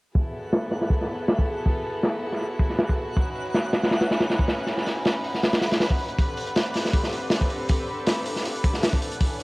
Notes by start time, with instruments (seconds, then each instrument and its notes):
0.15 string section B3 E4 F#4 G#4 A4, synth texture F#5, kick, open hi-hat
0.34 open hi-hat
0.44 closed hi-hat
0.53 snare, open hi-hat
0.63 closed hi-hat
0.71 snare, open hi-hat
0.81 snare
0.90 kick, open hi-hat
1.01 snare
1.09 open hi-hat
1.28 snare, open hi-hat
1.39 kick
1.47 open hi-hat
1.66 kick, open hi-hat
2.03 snare, open hi-hat
2.23 open hi-hat
2.32 snare
2.41 open hi-hat
2.59 kick, open hi-hat
2.70 snare
2.78 snare, open hi-hat
2.89 kick
2.98 open hi-hat
3.08 closed hi-hat
3.17 string section C#4 D#4 B4, kick, open hi-hat
3.35 open hi-hat
3.45 closed hi-hat
3.54 snare, open hi-hat
3.64 closed hi-hat
3.73 snare, open hi-hat
3.83 snare, open hi-hat
3.91 snare, open hi-hat
4.01 snare, open hi-hat
4.10 snare, open hi-hat
4.20 snare, open hi-hat
4.30 snare, open hi-hat
4.39 kick
4.48 snare, open hi-hat
4.59 closed hi-hat
4.67 snare, open hi-hat
4.78 snare
4.86 snare, open hi-hat
5.05 snare, open hi-hat
5.24 open hi-hat
5.34 snare
5.43 snare, open hi-hat
5.53 snare, open hi-hat
5.61 snare, open hi-hat
5.71 snare, open hi-hat
5.80 snare, open hi-hat
5.90 kick
5.99 open hi-hat
6.08 closed hi-hat
6.19 string section C4 D4 G4 A4, kick, open hi-hat
6.37 open hi-hat
6.47 closed hi-hat
6.56 snare, open hi-hat
6.65 closed hi-hat
6.74 snare, open hi-hat
6.85 snare
6.93 kick, open hi-hat
7.03 snare
7.13 open hi-hat
7.30 snare, open hi-hat
7.41 kick
7.50 open hi-hat
7.69 kick, open hi-hat
8.07 snare, open hi-hat
8.26 open hi-hat
8.36 snare
8.45 open hi-hat
8.64 kick, open hi-hat
8.74 snare
8.83 snare, open hi-hat
8.93 kick
9.02 open hi-hat
9.11 closed hi-hat
9.20 string section C#4 E4, kick, open hi-hat
9.40 open hi-hat